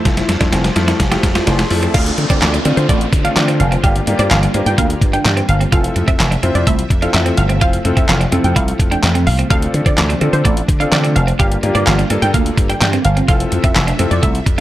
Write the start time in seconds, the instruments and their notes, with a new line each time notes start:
Already playing: string machine F4 C5 A5, riser
0.05 slap bass F1, grand piano F3 A3 E4, clean electric guitar F4, string machine D5, kick, snare, closed hi-hat
0.17 snare, closed hi-hat
0.29 slap bass F2, muted clean electric guitar stroke, snare, closed hi-hat
0.40 slap bass F2, grand piano F3 A3 E4, clean electric guitar D4, kick, snare, closed hi-hat
0.52 slap bass F1, clean electric guitar C4, snare, closed hi-hat
0.64 snare, closed hi-hat
0.76 slap bass F2, grand piano F3 A3 E4, muted clean electric guitar stroke, snare, closed hi-hat
0.88 clean electric guitar E4, snare, closed hi-hat
1.00 slap bass F1, kick, snare, closed hi-hat
1.11 grand piano F3 A3 E4, clean electric guitar G4, snare, closed hi-hat
1.23 slap bass F2, muted clean electric guitar stroke, kick, snare, closed hi-hat
1.35 grand piano F3 A3 E4, clean electric guitar F4, snare, closed hi-hat
1.47 slap bass F1, clean electric guitar D4, grand piano C6, snare, closed hi-hat
1.59 snare, closed hi-hat
1.70 slap bass F2, grand piano F3 A3 E4 E5, muted clean electric guitar stroke, open hi-hat
1.83 clean electric guitar C4, closed hi-hat
1.94 slap bass D2, string machine D3 A3 C4 F4, grand piano A3 C4 D4 F4, clean electric guitar D4, synth pluck F5, kick, closed hi-hat, crash, downlifter
2.06 closed hi-hat
2.18 slap bass D3, muted clean electric guitar stroke, closed hi-hat
2.30 slap bass D3, clean electric guitar C4, synth pluck D5, kick, closed hi-hat
2.42 slap bass D2, synth pluck D5, muted clean electric guitar stroke, snare, clap, closed hi-hat
2.54 clean electric guitar D4, closed hi-hat
2.65 slap bass D3, grand piano A3 C4 D4 F4, clean electric guitar C4, closed hi-hat
2.77 slap bass D3, synth pluck C5, closed hi-hat
2.89 slap bass A1, clean electric guitar A3, synth pluck D5, kick, closed hi-hat
3.01 closed hi-hat
3.13 slap bass D3, muted clean electric guitar stroke, kick, closed hi-hat
3.24 grand piano A3 C4 D4 F4, clean electric guitar D4, synth pluck F5, closed hi-hat
3.36 slap bass D3, synth pluck D5, snare, clap, closed hi-hat
3.48 clean electric guitar C4, closed hi-hat
3.60 slap bass F1, synth pluck F5, muted clean electric guitar stroke, closed hi-hat
3.72 clean electric guitar C4, closed hi-hat
3.83 slap bass G1, string machine G3 A#3, grand piano A#3 D4 F4 G4, clean electric guitar G4, synth pluck F5, kick, closed hi-hat
3.96 closed hi-hat
4.07 slap bass G2, grand piano A#3 D4 F4 G4, muted clean electric guitar stroke, closed hi-hat
4.19 slap bass G2, clean electric guitar C4, synth pluck D5, closed hi-hat
4.31 slap bass G1, synth pluck F5, snare, clap, closed hi-hat
4.43 clean electric guitar D4, closed hi-hat
4.54 slap bass G2, grand piano A#3 D4 F4 G4, clean electric guitar C4, closed hi-hat
4.66 slap bass G2, synth pluck G5, closed hi-hat
4.78 slap bass D2, clean electric guitar A#3, synth pluck F5, kick, closed hi-hat
4.90 closed hi-hat
5.01 slap bass G2, muted clean electric guitar stroke, kick, closed hi-hat
5.13 clean electric guitar D4, synth pluck G5, closed hi-hat
5.25 slap bass G2, synth pluck G5, snare, clap, closed hi-hat
5.37 clean electric guitar C4, closed hi-hat
5.49 slap bass G1, synth pluck F5, muted clean electric guitar stroke, closed hi-hat
5.61 clean electric guitar C4, closed hi-hat
5.72 slap bass F1, string machine C3 F3 A3 E5, grand piano C4 E4 F4 A4, clean electric guitar F4, synth pluck F5, kick, closed hi-hat
5.84 closed hi-hat
5.96 slap bass F2, muted clean electric guitar stroke, closed hi-hat
6.08 slap bass F2, clean electric guitar C4, synth pluck E5, kick, closed hi-hat
6.19 slap bass F1, synth pluck E5, muted clean electric guitar stroke, snare, clap, closed hi-hat
6.31 clean electric guitar D4, closed hi-hat
6.43 slap bass F2, clean electric guitar C4, grand piano C4 E4 F4 C5, closed hi-hat
6.55 slap bass F2, synth pluck D5, closed hi-hat
6.67 slap bass C2, clean electric guitar A3, synth pluck E5, kick, closed hi-hat
6.79 closed hi-hat
6.90 slap bass F2, muted clean electric guitar stroke, kick, closed hi-hat
7.02 grand piano C4 E4 F4 A4, clean electric guitar D4, synth pluck F5, closed hi-hat
7.14 slap bass F2, synth pluck E5, snare, clap, closed hi-hat
7.26 clean electric guitar C4, closed hi-hat
7.37 slap bass G1, synth pluck F5, muted clean electric guitar stroke, closed hi-hat
7.49 clean electric guitar C4, closed hi-hat
7.61 slap bass F1, grand piano C4 E4 F4 C5, clean electric guitar F4, synth pluck F5, kick, closed hi-hat
7.73 closed hi-hat
7.85 slap bass F2, grand piano C4 E4 F4 A4, muted clean electric guitar stroke, closed hi-hat
7.97 slap bass F2, clean electric guitar C4, synth pluck E5, kick, closed hi-hat
8.09 slap bass F1, synth pluck F5, muted clean electric guitar stroke, snare, clap, closed hi-hat
8.21 clean electric guitar D4, closed hi-hat
8.32 slap bass F2, grand piano C4 E4 F4 A4, clean electric guitar C4, closed hi-hat
8.44 slap bass F2, synth pluck G5, closed hi-hat
8.56 slap bass C2, clean electric guitar E4, synth pluck F5, kick, closed hi-hat
8.68 closed hi-hat
8.79 slap bass F2, muted clean electric guitar stroke, kick, closed hi-hat
8.91 clean electric guitar D4, synth pluck G5, closed hi-hat
9.03 slap bass F2, snare, clap, closed hi-hat
9.15 clean electric guitar C4, closed hi-hat
9.27 slap bass C2, synth pluck F5, muted clean electric guitar stroke, open hi-hat
9.39 clean electric guitar C4, closed hi-hat
9.50 slap bass D2, grand piano C4 D4 F4 A4, clean electric guitar D4, string machine D4, synth pluck F5, kick, closed hi-hat
9.62 closed hi-hat
9.74 slap bass D3, muted clean electric guitar stroke, closed hi-hat
9.86 slap bass D3, clean electric guitar C4, synth pluck D5, kick, closed hi-hat
9.98 slap bass D2, synth pluck D5, muted clean electric guitar stroke, snare, clap, closed hi-hat
10.09 clean electric guitar D4, closed hi-hat
10.21 slap bass D3, grand piano C4 D4 F4 A4, clean electric guitar C4, closed hi-hat
10.33 slap bass D3, synth pluck C5, closed hi-hat
10.45 slap bass A1, clean electric guitar A3, synth pluck D5, kick, closed hi-hat
10.57 closed hi-hat
10.68 slap bass D3, muted clean electric guitar stroke, kick, closed hi-hat
10.80 grand piano C4 D4 F4 A4, clean electric guitar D4, synth pluck F5, closed hi-hat
10.92 slap bass D3, synth pluck D5, snare, clap, closed hi-hat
11.04 clean electric guitar C4, closed hi-hat
11.16 slap bass F1, synth pluck F5, muted clean electric guitar stroke, closed hi-hat
11.27 clean electric guitar C4, closed hi-hat
11.39 slap bass G1, string machine D3 G3 A#3 F4, grand piano A#3 D4 F4 G4, clean electric guitar G4, synth pluck F5, kick, closed hi-hat
11.52 closed hi-hat
11.63 slap bass G2, grand piano A#3 D4 F4 G4, muted clean electric guitar stroke, closed hi-hat
11.75 slap bass G2, clean electric guitar C4, synth pluck D5, closed hi-hat
11.87 slap bass G1, synth pluck F5, muted clean electric guitar stroke, snare, clap, closed hi-hat
11.99 clean electric guitar D4, closed hi-hat
12.10 slap bass G2, grand piano A#3 D4 F4 A4, clean electric guitar C4, closed hi-hat
12.22 slap bass G2, synth pluck G5, closed hi-hat
12.34 slap bass D2, clean electric guitar A#3, synth pluck F5, kick, closed hi-hat
12.46 closed hi-hat
12.57 slap bass G2, muted clean electric guitar stroke, kick, closed hi-hat
12.70 clean electric guitar D4, synth pluck G5, closed hi-hat
12.81 slap bass G2, synth pluck G5, snare, clap, closed hi-hat
12.93 clean electric guitar C4, closed hi-hat
13.05 slap bass G1, synth pluck F5, muted clean electric guitar stroke, closed hi-hat
13.17 clean electric guitar C4, closed hi-hat
13.28 slap bass F1, string machine C3 F3 A3 E5, grand piano C4 E4 F4 A4, clean electric guitar F4, synth pluck F5, kick, closed hi-hat
13.40 closed hi-hat
13.52 slap bass F2, muted clean electric guitar stroke, closed hi-hat
13.64 slap bass F2, clean electric guitar C4, synth pluck E5, kick, closed hi-hat
13.76 slap bass F1, synth pluck E5, muted clean electric guitar stroke, snare, clap, closed hi-hat
13.87 clean electric guitar D4, closed hi-hat
13.99 slap bass F2, clean electric guitar C4, grand piano C4 E4 F4 A4, closed hi-hat
14.11 slap bass F2, synth pluck D5, closed hi-hat
14.23 slap bass C2, clean electric guitar A3, synth pluck E5, kick, closed hi-hat
14.35 closed hi-hat
14.46 slap bass F2, muted clean electric guitar stroke, kick, closed hi-hat